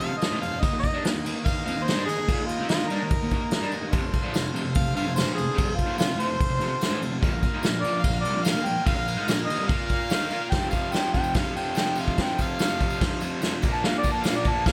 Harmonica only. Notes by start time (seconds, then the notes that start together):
0.00 F5
0.18 D#5
0.42 F5
0.62 D#5
0.80 D#5
1.45 F5
1.66 F5
1.84 C5
2.06 G#4
2.46 F4
2.69 F4
2.88 A#4
4.76 F5
4.96 F5
5.16 C5
5.34 G#4
5.75 F4
5.99 F4
6.21 C5
7.81 D5
8.03 F5
8.21 D5
8.43 F5
8.66 G5
8.86 F5
9.45 D#5
9.68 F5
9.86 F5
10.50 G5
10.70 F5
10.92 G5
11.14 G5
11.35 F5
11.56 G5
11.77 G5
12.00 F5
12.23 G5
12.42 F5
13.73 A5
13.85 F5
13.99 D5
14.12 A5
14.23 F5
14.36 D5
14.50 A5
14.67 F5